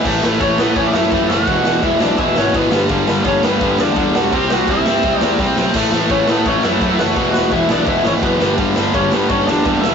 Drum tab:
CC |x-------|--------|--------|--------|
RD |--x-x-x-|x-x-x-x-|x-x-x-x-|x-x-x---|
SD |-o-o-o-o|-o-o-o-o|-o-o-o-o|-o-o-ooo|
BD |o-o-o-o-|o-o-o-o-|o-o-o-o-|o-o-o-o-|

CC |x-------|--------|--------|
RD |x-x-x-x-|x-x-x-x-|x-x-x-x-|
SD |-o-o-o-o|-o-o-o-o|-o-o-o-o|
BD |o-o-o-o-|o-o-o-o-|o-o-o-o-|